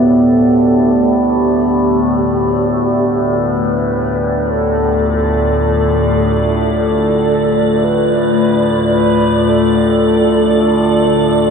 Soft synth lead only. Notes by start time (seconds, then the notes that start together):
0.06 A4
1.16 G4
3.40 B4
4.51 A4
6.74 A4
7.84 B4
8.93 B4
9.49 A4